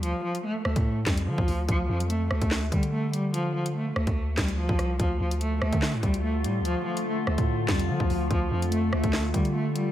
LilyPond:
<<
  \new Staff \with { instrumentName = "Ambient pad" } { \time 4/4 \key d \minor \tempo 4 = 145 r1 | r1 | r1 | <d a f'>1~ |
<d a f'>1~ | <d a f'>1 | }
  \new Staff \with { instrumentName = "Cello" } { \clef bass \time 4/4 \key d \minor f8 f8 a8 a4 g8 f4 | f8 f8 a8 a4 g8 a8 g8 | f8 f8 a8 a4 g8 f4 | f8 f8 a8 a4 g8 a8 g8 |
f8 f8 a8 a4 g8 f4 | f8 f8 a8 a4 g8 a8 g8 | }
  \new Staff \with { instrumentName = "808-style bass" } { \clef bass \time 4/4 \key d \minor d,16 r4 r16 d,16 a,8. f,8 d16 d,16 d,8 | d,8 f,4 d,16 d,8. d4.~ | d4. d,16 d,8. d,8. d,16 c,8 | d,8 d,4 d,16 d8 a,16 d,4 a,16. d,32~ |
d,16 r4 r16 d,16 a,8. f,8 d16 d,16 d,8 | d,8 f,4 d,16 d,8. d4. | }
  \new DrumStaff \with { instrumentName = "Drums" } \drummode { \time 4/4 hh8. hh16 r8 ss16 <hh bd>16 r8 <hc hh bd sn>16 hh16 r16 bd16 hho8 | <hh bd>8. hh16 hh8 ss16 <hh bd>16 <hc sn>8 <hh bd>16 hh16 r8 hh8 | hh8. hh16 r8 ss16 <hh bd>16 r8 <hc hh bd sn>16 hh16 r16 bd16 <hh ss>8 | <hh bd>8. hh16 hh8 ss16 <hh bd>16 <hc sn>8 <hh bd>16 hh16 r8 hh8 |
hh8. hh16 r8 ss16 <hh bd>16 r8 <hc hh bd sn>16 hh16 r16 bd16 hho8 | <hh bd>8. hh16 hh8 ss16 <hh bd>16 <hc sn>8 <hh bd>16 hh16 r8 hh8 | }
>>